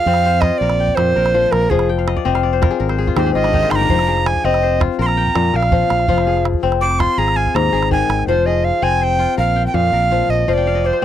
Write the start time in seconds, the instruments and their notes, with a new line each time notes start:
Already playing: kora F3 F4 G#4 D#5, recorder F5
0.06 fingered electric bass F2, kora C4
0.14 calabash click
0.26 kora C5
0.41 kora F4, recorder D#5, calabash thump, calabash click
0.58 fingered electric bass A#1, kora A#4, recorder D5
0.70 calabash click
0.80 kora G5
0.89 calabash thump
0.95 fingered electric bass F2, kora A#2, recorder C5, calabash click
1.16 fingered electric bass A#1, kora A#4, calabash click
1.26 calabash click
1.34 kora F3
1.51 fingered electric bass A#1, recorder A#4, calabash click
1.62 calabash click
1.70 fingered electric bass F1, kora F3, recorder G#4, calabash thump
1.79 calabash click
1.89 kora G5
1.98 kora F5, calabash click
2.08 kora D#5, calabash click
2.16 kora D5, calabash thump
2.25 fingered electric bass F1, kora C4 D#5
2.35 kora F5, calabash click
2.43 kora D5
2.53 kora C5
2.62 kora F4 A#4, calabash thump, calabash click
2.71 kora G#4
2.80 fingered electric bass G#1, kora A#4
2.89 kora C5, calabash click
2.98 kora G#4
3.07 kora F4, calabash thump
3.16 fingered electric bass D#2, kora G#2 G4, recorder C5, calabash click
3.26 kora G#4
3.34 fingered electric bass G#1, kora F4, recorder D#5, calabash click
3.44 kora D4, calabash click
3.54 kora D#3 D#4, calabash thump
3.62 kora F4
3.71 fingered electric bass G1, kora D#4, recorder C6, calabash click
3.76 recorder A#5
3.80 kora D4, calabash click
3.89 fingered electric bass F1, kora F3, calabash thump
3.99 calabash click
4.08 kora G#4
4.17 calabash click
4.26 recorder G#5, calabash click
4.36 calabash thump
4.44 fingered electric bass F1, kora C4, recorder D#5
4.54 calabash click
4.63 kora C5
4.80 kora F4, calabash thump, calabash click
4.99 fingered electric bass A#1, kora A#4, recorder C6
5.06 recorder A#5, calabash click
5.17 kora G5
5.27 calabash thump
5.35 fingered electric bass F2, kora A#2, calabash click
5.54 fingered electric bass A#1, kora A#4, recorder F5, calabash click
5.63 calabash click
5.72 kora F3, calabash thump
5.90 fingered electric bass A#1, calabash click
6.00 calabash click
6.08 fingered electric bass F1, kora F3 F4, calabash thump
6.18 calabash click
6.27 kora G#4
6.37 calabash click
6.45 calabash click
6.54 calabash thump
6.63 fingered electric bass F1, kora C4, calabash click
6.72 calabash click
6.81 kora C5, recorder D6
6.91 calabash click
6.99 kora F4, recorder C6, calabash thump, calabash click
7.18 fingered electric bass G#1, kora G#4, recorder A#5
7.28 calabash click
7.36 kora F5, recorder G#5, calabash click
7.47 calabash thump, calabash click
7.55 fingered electric bass D#2, kora G#2, recorder A#5, calabash click
7.73 fingered electric bass G#1, kora G#4
7.83 calabash click
7.91 kora D#3, recorder G#5, calabash thump
8.09 fingered electric bass G#1, calabash click
8.19 calabash click
8.27 fingered electric bass F1, kora F3 F4, recorder C5
8.46 kora G#4, recorder D#5
8.64 recorder F5
8.82 fingered electric bass F1, kora C4, recorder G#5
9.00 kora C5, recorder G5 G#5
9.19 kora F4
9.38 fingered electric bass A#1, kora A#4, recorder F5
9.56 kora G5
9.67 recorder G5
9.74 fingered electric bass F2, kora A#2, recorder F5
9.92 fingered electric bass A#1, kora A#4
10.11 kora F3
10.29 fingered electric bass A#1, recorder D#5
10.48 fingered electric bass F1, kora F3 F5, recorder D#5
10.54 recorder D5, kora G5
10.67 kora F5
10.75 kora D#5
10.84 recorder C5, kora D5
10.93 kora C5